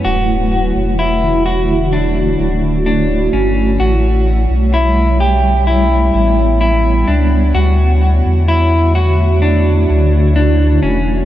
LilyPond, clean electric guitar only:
\new Staff \with { instrumentName = "Clean electric guitar" } { \time 4/4 \key d \major \tempo 4 = 64 fis'4 e'8 fis'8 d'4 d'8 cis'8 | fis'4 e'8 g'8 e'4 e'8 d'8 | fis'4 e'8 fis'8 d'4 d'8 cis'8 | }